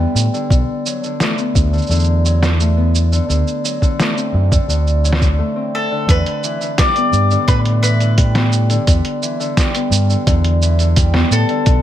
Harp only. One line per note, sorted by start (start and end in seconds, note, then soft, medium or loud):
0.00 0.32 D3 medium
0.00 0.38 G3 medium
0.00 1.38 B3 medium
0.33 0.50 D3 medium
0.51 1.03 D3 medium
0.87 1.08 F#3 medium
1.04 1.72 D3 medium
1.21 2.60 A3 medium
1.39 2.76 B3 medium
1.73 1.89 D3 medium
1.90 2.41 D3 medium
2.25 2.47 F#3 medium
2.42 3.11 D3 medium
2.60 3.98 A3 medium
2.77 4.22 B3 medium
3.12 3.27 D3 medium
3.29 3.80 D3 medium
3.64 3.87 F#3 medium
3.82 4.51 D3 medium
3.99 5.38 A3 medium
4.17 5.56 C4 medium
4.52 4.68 D3 medium
4.69 5.21 D3 medium
5.04 5.26 F#3 medium
5.22 5.90 D3 medium
5.38 8.71 A3 medium
5.56 7.03 C4 medium
5.91 6.07 D3 medium
6.08 6.60 D3 medium
6.44 6.66 E3 medium
6.61 7.30 D3 medium
6.79 7.36 G3 medium
6.97 8.35 B3 medium
7.31 7.47 D3 medium
7.48 8.00 D3 medium
7.84 8.05 E3 medium
8.01 8.68 D3 medium
8.18 8.75 G3 medium
8.35 9.75 B3 medium
8.70 8.86 D3 medium
8.87 9.39 D3 medium
9.22 9.45 E3 medium
9.40 10.08 D3 medium
9.57 10.15 G3 medium
9.75 11.14 B3 medium
10.09 10.26 D3 medium
10.27 10.79 D3 medium
10.62 10.84 E3 medium
10.80 11.48 D3 medium
10.97 11.54 G3 medium
11.14 11.82 B3 medium
11.50 11.66 D3 medium
11.67 11.82 D3 medium